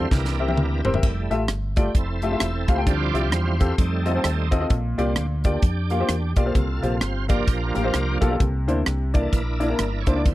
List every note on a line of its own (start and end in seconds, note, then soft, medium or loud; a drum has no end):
0.00 0.12 C5 medium
0.11 0.57 C2 medium
0.11 0.81 C3 medium
0.11 0.81 E3 medium
0.11 0.81 A#3 soft
0.11 0.82 D4 medium
0.11 1.00 E4 medium
0.11 1.00 G4 medium
0.11 0.81 A#4 medium
0.11 kick medium
0.11 snare soft
0.25 snare soft
0.39 0.45 C4 medium
0.39 0.45 G4 medium
0.39 0.45 A#4 medium
0.39 0.45 E5 medium
0.48 0.59 C4 medium
0.48 0.59 G4 medium
0.48 0.59 A#4 medium
0.48 0.59 E5 medium
0.48 high tom medium
0.57 0.81 D2 medium
0.57 mid tom medium
0.84 1.00 E1 medium
0.84 0.90 C4 medium
0.84 0.90 G4 medium
0.84 0.90 A#4 medium
0.84 0.90 C5 medium
0.84 floor tom medium
0.94 1.03 C4 medium
0.94 1.03 G4 medium
0.94 1.03 A#4 medium
0.94 1.04 E5 medium
0.94 floor tom medium
1.03 1.27 F1 medium
1.03 1.36 G3 medium
1.03 1.36 A3 soft
1.03 1.37 E4 medium
1.03 kick loud
1.03 splash medium
1.30 1.46 A1 medium
1.30 1.41 A3 medium
1.30 1.41 F4 medium
1.30 1.41 G4 medium
1.30 1.41 E5 medium
1.30 closed hi-hat medium
1.48 1.88 G1 medium
1.48 cross-stick loud
1.48 closed hi-hat medium
1.76 1.87 A3 medium
1.76 1.87 F4 medium
1.76 1.87 G4 medium
1.76 1.96 G4 medium
1.76 1.87 D5 medium
1.76 kick medium
1.76 closed hi-hat medium
1.95 2.34 F1 medium
1.95 2.83 C4 medium
1.95 2.83 E4 medium
1.95 2.71 A4 medium
1.95 kick medium
1.95 closed hi-hat medium
2.22 2.28 A3 medium
2.22 2.28 F4 medium
2.22 2.28 G4 medium
2.22 2.28 E5 medium
2.22 closed hi-hat medium
2.32 2.43 A3 medium
2.32 2.43 F4 medium
2.32 2.43 G4 medium
2.32 2.43 E5 medium
2.40 2.64 E1 medium
2.40 cross-stick loud
2.40 closed hi-hat medium
2.68 2.84 C#2 medium
2.68 2.74 A3 medium
2.68 2.74 F4 medium
2.68 2.74 G4 medium
2.68 2.85 C5 medium
2.68 2.74 F5 medium
2.68 kick medium
2.68 closed hi-hat medium
2.77 2.87 A3 medium
2.77 2.87 F4 medium
2.77 2.87 G4 medium
2.77 2.87 G5 medium
2.86 3.10 D2 medium
2.86 3.56 D3 medium
2.86 3.56 F3 medium
2.86 3.57 G3 soft
2.86 3.57 C4 soft
2.86 3.32 E4 medium
2.86 3.32 F4 medium
2.86 3.75 G4 medium
2.86 3.34 D5 loud
2.86 kick loud
2.86 closed hi-hat medium
3.13 3.32 C2 medium
3.13 3.24 C4 medium
3.13 3.25 F4 medium
3.13 3.25 G4 medium
3.13 3.25 E5 medium
3.13 closed hi-hat medium
3.32 3.72 E2 medium
3.32 3.76 E4 medium
3.32 3.76 F4 medium
3.32 3.80 C5 medium
3.32 cross-stick loud
3.32 closed hi-hat medium
3.60 3.71 C4 medium
3.60 3.71 F4 medium
3.60 3.71 G4 medium
3.60 3.71 A4 medium
3.60 kick medium
3.60 closed hi-hat medium
3.78 4.18 F2 medium
3.78 4.48 G3 medium
3.78 4.49 A3 medium
3.78 4.67 C4 medium
3.78 4.67 D#4 medium
3.78 4.49 A4 medium
3.78 kick medium
3.78 closed hi-hat medium
4.06 4.11 C4 medium
4.06 4.11 F4 medium
4.06 4.11 A4 medium
4.06 4.11 D#5 medium
4.06 cross-stick soft
4.06 closed hi-hat medium
4.15 4.26 C4 medium
4.15 4.26 F4 medium
4.15 4.26 A4 medium
4.15 4.26 C5 medium
4.24 4.64 D#2 medium
4.24 cross-stick loud
4.24 closed hi-hat loud
4.51 4.57 C4 medium
4.51 4.57 F4 medium
4.51 4.57 A4 medium
4.51 4.57 D#5 medium
4.51 kick medium
4.51 closed hi-hat medium
4.60 4.70 C4 medium
4.60 4.70 F4 medium
4.60 4.70 A4 medium
4.60 4.70 D#5 medium
4.70 4.94 A#1 medium
4.70 5.40 A#2 medium
4.70 kick loud
4.70 closed hi-hat medium
4.98 5.14 C2 medium
4.98 5.26 G3 soft
4.98 5.09 A#3 medium
4.98 5.27 C4 soft
4.98 5.27 D4 soft
4.98 5.09 F4 medium
4.98 5.09 G4 medium
4.98 5.09 D5 medium
4.98 closed hi-hat medium
5.16 5.56 D2 medium
5.16 cross-stick loud
5.16 closed hi-hat medium
5.44 5.55 A#3 medium
5.44 6.33 D4 medium
5.44 5.55 F4 medium
5.44 5.55 G4 medium
5.44 6.40 G4 medium
5.44 5.55 D5 medium
5.44 kick medium
5.44 closed hi-hat medium
5.62 6.02 F2 medium
5.62 kick loud
5.62 closed hi-hat medium
5.90 5.96 A#3 medium
5.90 5.96 F4 medium
5.90 5.96 G4 medium
5.90 5.96 F5 medium
5.90 cross-stick soft
5.90 closed hi-hat medium
6.00 6.11 A#3 medium
6.00 6.11 F4 medium
6.00 6.11 G4 medium
6.00 6.11 C5 medium
6.09 6.33 E2 medium
6.09 cross-stick loud
6.09 closed hi-hat loud
6.36 6.52 B1 medium
6.36 6.42 A#3 medium
6.36 7.25 F4 medium
6.36 6.42 F4 medium
6.36 6.42 G4 medium
6.36 6.97 A4 medium
6.36 6.42 D5 medium
6.36 kick medium
6.36 closed hi-hat medium
6.46 6.55 A#3 medium
6.46 6.55 F4 medium
6.46 6.55 G4 medium
6.46 6.55 C5 medium
6.55 6.79 C2 loud
6.55 7.25 C3 medium
6.55 kick loud
6.55 closed hi-hat medium
6.82 6.99 A#1 medium
6.82 6.93 A#3 medium
6.82 6.93 F4 medium
6.82 6.93 G4 medium
6.82 6.93 C5 medium
6.82 closed hi-hat medium
7.01 7.41 G1 medium
7.01 7.27 C5 medium
7.01 cross-stick loud
7.01 closed hi-hat medium
7.28 8.36 F3 medium
7.28 7.39 A#3 medium
7.28 8.36 A#3 soft
7.28 8.36 D4 medium
7.28 7.40 F4 medium
7.28 8.18 F4 medium
7.28 7.40 G4 medium
7.28 8.18 G4 medium
7.28 8.18 A#4 medium
7.28 7.40 D5 medium
7.28 kick medium
7.28 closed hi-hat medium
7.48 7.71 A#1 medium
7.48 kick medium
7.48 closed hi-hat medium
7.75 7.92 A1 medium
7.75 7.80 A#3 medium
7.75 7.80 F4 medium
7.75 7.81 G4 medium
7.75 7.81 A#4 medium
7.75 closed hi-hat medium
7.84 7.96 A#3 medium
7.84 7.96 F4 medium
7.84 7.96 G4 medium
7.84 7.96 C5 medium
7.94 8.18 C2 medium
7.94 cross-stick loud
7.94 closed hi-hat medium
8.21 8.37 B1 medium
8.21 8.27 A#3 medium
8.21 8.27 F4 medium
8.21 8.27 G4 medium
8.21 8.27 A4 medium
8.21 kick medium
8.21 cross-stick soft
8.21 closed hi-hat medium
8.30 8.40 A#3 medium
8.30 8.40 F4 medium
8.30 8.40 G4 medium
8.30 8.40 A4 medium
8.40 8.69 C2 medium
8.40 9.11 C3 medium
8.40 kick loud
8.40 closed hi-hat medium
8.68 8.84 D2 medium
8.68 8.78 A#3 medium
8.68 8.79 D4 medium
8.68 8.79 E4 medium
8.68 8.79 C5 medium
8.68 closed hi-hat medium
8.86 9.26 C2 medium
8.86 cross-stick loud
8.86 closed hi-hat medium
9.14 9.42 E3 soft
9.14 9.25 A#3 medium
9.14 9.43 A#3 soft
9.14 9.25 D4 medium
9.14 9.32 D4 medium
9.14 9.25 E4 medium
9.14 9.34 A4 medium
9.14 9.25 D5 medium
9.14 kick medium
9.14 closed hi-hat medium
9.33 9.72 A#1 medium
9.33 10.22 D4 medium
9.33 10.22 E4 medium
9.33 10.03 A#4 medium
9.33 kick medium
9.33 closed hi-hat medium
9.60 9.66 A#3 medium
9.60 9.66 D4 medium
9.60 9.66 E4 medium
9.60 9.66 D5 medium
9.60 closed hi-hat medium
9.69 9.81 A#3 medium
9.69 9.81 D4 medium
9.69 9.81 E4 medium
9.69 9.81 A#4 medium
9.79 10.03 G1 medium
9.79 cross-stick loud
9.79 closed hi-hat medium
10.01 10.08 C#5 medium
10.06 10.23 C#2 medium
10.06 10.12 A#3 medium
10.06 10.12 D4 medium
10.06 10.12 E4 medium
10.06 10.13 C5 medium
10.06 10.25 D5 medium
10.06 kick medium
10.06 cross-stick soft
10.06 closed hi-hat medium
10.16 10.26 A#3 medium
10.16 10.25 D4 medium
10.16 10.26 E4 medium
10.16 10.26 D5 medium
10.25 10.34 D2 loud
10.25 10.34 D3 medium
10.25 10.34 F3 medium
10.25 10.34 C4 soft
10.25 10.34 E4 medium
10.25 kick loud
10.25 closed hi-hat medium